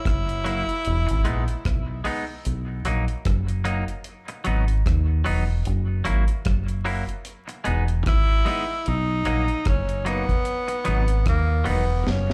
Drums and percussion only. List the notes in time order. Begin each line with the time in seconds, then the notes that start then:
0.05 kick, cross-stick, closed hi-hat
0.29 closed hi-hat
0.46 closed hi-hat
0.69 closed hi-hat
0.85 closed hi-hat
1.08 closed hi-hat
1.25 closed hi-hat
1.48 closed hi-hat
1.65 kick, cross-stick, closed hi-hat
2.05 open hi-hat
2.45 closed hi-hat
2.85 closed hi-hat
3.08 closed hi-hat
3.25 kick, cross-stick, closed hi-hat
3.48 closed hi-hat
3.65 closed hi-hat
3.88 closed hi-hat
4.04 closed hi-hat
4.28 closed hi-hat
4.45 closed hi-hat
4.68 closed hi-hat
4.86 kick, cross-stick, closed hi-hat
5.26 open hi-hat
5.65 closed hi-hat
6.05 closed hi-hat
6.28 closed hi-hat
6.45 kick, cross-stick, closed hi-hat
6.68 closed hi-hat
6.86 open hi-hat
7.09 closed hi-hat
7.25 closed hi-hat
7.49 closed hi-hat
7.65 closed hi-hat
7.88 closed hi-hat
8.06 kick, cross-stick, closed hi-hat
8.46 cross-stick, open hi-hat
8.86 closed hi-hat
9.25 closed hi-hat
9.48 closed hi-hat
9.65 kick, cross-stick, closed hi-hat
9.89 closed hi-hat
10.06 closed hi-hat
10.29 kick, closed hi-hat
10.45 closed hi-hat
10.68 closed hi-hat
10.85 closed hi-hat
11.08 closed hi-hat
11.26 kick, cross-stick, closed hi-hat
11.66 open hi-hat
12.07 snare
12.30 snare